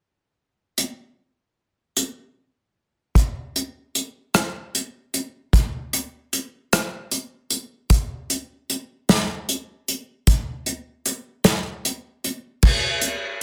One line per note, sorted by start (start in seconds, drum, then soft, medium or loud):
0.78 closed hi-hat soft
1.97 closed hi-hat soft
3.15 kick medium
3.15 closed hi-hat medium
3.56 closed hi-hat medium
3.95 closed hi-hat medium
4.34 cross-stick medium
4.34 closed hi-hat medium
4.75 closed hi-hat medium
5.14 closed hi-hat soft
5.53 kick loud
5.53 closed hi-hat medium
5.93 closed hi-hat medium
6.33 closed hi-hat medium
6.73 cross-stick medium
6.73 closed hi-hat medium
7.11 closed hi-hat medium
7.50 closed hi-hat medium
7.90 kick loud
7.90 closed hi-hat medium
8.30 closed hi-hat medium
8.70 closed hi-hat soft
9.09 snare medium
9.09 closed hi-hat medium
9.49 closed hi-hat medium
9.88 closed hi-hat medium
10.27 kick loud
10.27 closed hi-hat medium
10.66 closed hi-hat soft
11.06 closed hi-hat medium
11.44 snare medium
11.44 closed hi-hat medium
11.85 closed hi-hat medium
12.24 closed hi-hat medium
12.63 kick loud
12.63 crash medium
13.01 closed hi-hat medium